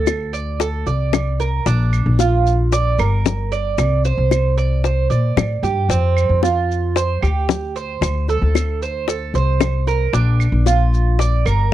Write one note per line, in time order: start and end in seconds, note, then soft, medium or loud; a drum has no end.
0.00 0.82 D2 medium
0.00 0.32 A4 medium
0.07 high bongo medium
0.07 claves medium
0.07 maracas medium
0.33 0.59 D5 medium
0.33 maracas soft
0.60 0.86 A4 medium
0.60 high bongo medium
0.60 maracas medium
0.86 1.62 C2 medium
0.86 1.38 D5 medium
0.86 high bongo soft
0.86 maracas soft
1.13 high bongo medium
1.13 low bongo medium
1.13 claves medium
1.13 maracas medium
1.40 1.66 A#4 medium
1.40 high bongo soft
1.40 maracas soft
1.66 2.04 A#1 medium
1.66 2.18 D4 medium
1.66 high bongo medium
1.66 maracas medium
1.93 claves medium
1.93 maracas soft
2.06 2.95 A#1 medium
2.19 2.71 F4 medium
2.19 high bongo medium
2.19 maracas medium
2.47 maracas soft
2.72 2.98 D5 medium
2.72 high bongo medium
2.72 maracas medium
2.98 3.74 G1 medium
2.98 3.50 A#4 medium
2.98 claves medium
2.98 maracas soft
3.26 high bongo medium
3.26 low bongo medium
3.26 maracas medium
3.52 4.03 D5 medium
3.52 maracas soft
3.78 4.16 C2 medium
3.78 high bongo medium
3.78 claves medium
3.78 maracas medium
4.05 4.56 C5 medium
4.05 high bongo soft
4.05 maracas soft
4.18 5.06 C2 medium
4.31 high bongo soft
4.31 claves medium
4.31 maracas medium
4.57 4.83 D5 medium
4.57 maracas soft
4.84 5.10 C5 medium
4.84 high bongo medium
4.84 maracas medium
5.10 5.34 A#2 medium
5.10 5.62 D5 medium
5.10 high bongo soft
5.10 maracas soft
5.36 5.61 A2 medium
5.36 high bongo medium
5.36 low bongo medium
5.36 claves medium
5.36 maracas medium
5.63 5.87 G2 medium
5.63 5.89 G4 medium
5.63 high bongo soft
5.63 maracas soft
5.89 6.27 F2 medium
5.89 6.41 C4 medium
5.89 high bongo medium
5.89 maracas medium
6.17 claves medium
6.17 maracas soft
6.29 7.18 F2 medium
6.43 6.94 F4 medium
6.43 high bongo medium
6.43 maracas medium
6.71 maracas soft
6.96 7.22 C5 medium
6.96 high bongo medium
6.96 maracas medium
7.22 7.98 D2 medium
7.22 7.74 G4 medium
7.22 claves medium
7.22 maracas soft
7.49 high bongo medium
7.49 low bongo medium
7.49 maracas medium
7.76 8.27 C5 medium
7.76 maracas soft
8.01 8.39 D2 medium
8.01 high bongo medium
8.01 claves medium
8.01 maracas medium
8.28 8.80 A4 medium
8.28 high bongo soft
8.28 maracas soft
8.41 9.30 D2 medium
8.55 high bongo medium
8.55 claves medium
8.55 maracas medium
8.82 9.07 C5 medium
8.82 maracas soft
9.08 9.34 A4 medium
9.08 high bongo medium
9.08 maracas medium
9.34 10.09 C2 medium
9.34 9.86 C5 medium
9.34 high bongo soft
9.34 maracas soft
9.61 high bongo medium
9.61 low bongo medium
9.61 claves medium
9.61 maracas medium
9.87 10.13 A#4 medium
9.87 high bongo soft
9.87 maracas soft
10.13 10.51 A#1 medium
10.13 10.65 D4 medium
10.13 high bongo medium
10.13 maracas medium
10.40 claves medium
10.40 maracas soft
10.52 11.41 A#1 medium
10.66 11.18 F4 medium
10.66 high bongo soft
10.66 maracas medium
10.94 maracas soft
11.19 11.45 D5 medium
11.19 high bongo medium
11.19 maracas medium
11.45 11.74 G1 medium
11.45 11.74 A#4 medium
11.45 claves medium
11.45 maracas soft